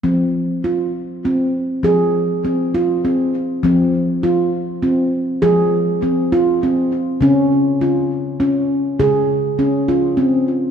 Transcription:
<<
  \new Staff \with { instrumentName = "Handpan" } { \time 6/8 \key f \minor \tempo 4. = 67 c'4 f'4 c'4 | aes'4 c'8 f'8 c'4 | c'4 f'4 c'4 | aes'4 c'8 f'8 c'4 |
des'4 f'4 des'4 | aes'4 des'8 f'8 c'4 | }
  \new Staff \with { instrumentName = "Handpan" } { \clef bass \time 6/8 \key f \minor f2. | f2. | f2. | f2. |
des2. | des2. | }
>>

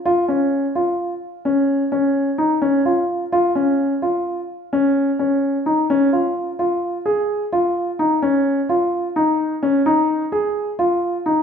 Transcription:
\new Staff \with { instrumentName = "Grand piano" } { \time 7/8 \key des \major \tempo 4 = 128 f'8 des'4 f'4 r8 des'8~ | des'8 des'4 ees'8 des'8 f'4 | f'8 des'4 f'4 r8 des'8~ | des'8 des'4 ees'8 des'8 f'4 |
f'4 aes'4 f'4 ees'8 | des'4 f'4 ees'4 des'8 | ees'4 aes'4 f'4 ees'8 | }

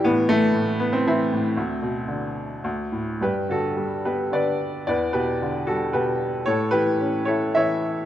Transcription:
<<
  \new Staff \with { instrumentName = "Upright piano" } { \time 3/4 \key g \major \tempo 4 = 110 << { b8 a4 b16 c'16 e'4~ | e'2 r4 | b'8 a'4 b'8 d''4 | d''8 b'4 a'8 b'8. r16 |
cis''8 b'4 cis''8 e''4 | } \\ { e4. r8 c'4~ | c'2 r4 | g'8 fis'4 g'8 b'4 | b'8 g'4 fis'8 g'8. r16 |
a'8 g'4 a'8 cis''4 | } >> }
  \new Staff \with { instrumentName = "Upright piano" } { \clef bass \time 3/4 \key g \major a,8 e8 a,4 e8 a,8 | d,8 b,8 d4 d,8 a,8 | g,8 d8 g8 b8 d4 | e,8 b,8 d8 g8 b,4 |
a,8 e8 cis'8 e'8 e4 | }
>>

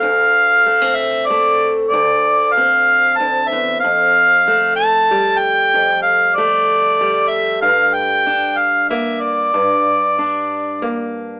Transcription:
<<
  \new Staff \with { instrumentName = "Harmonica" } { \time 3/4 \key d \minor \tempo 4 = 95 f''4. e''8 d''4 | d''4 f''4 a''8 e''8 | f''4. a''4 g''8~ | g''8 f''8 d''4. e''8 |
f''8 g''4 f''8 e''8 d''8~ | d''2~ d''8 r8 | }
  \new Staff \with { instrumentName = "Steel-string acoustic guitar" } { \clef bass \time 3/4 \key d \minor << { r4 a16 c'8. a4 | r4 c'2 | r4 a4 g4~ | g4 a4 g4~ |
g4 d'4 bes4 | r4 d'4 bes4 | } \\ { d,2. | d,2 d,8 e,8 | f,2. | f,2. |
g,2. | g,2. | } >> }
>>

